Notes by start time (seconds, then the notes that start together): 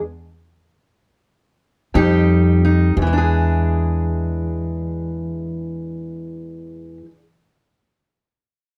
1.94 F2 G3 D#4 G4
2.65 D#4
2.97 E2
3.02 E3
3.07 G#3
3.13 D4
3.18 G#4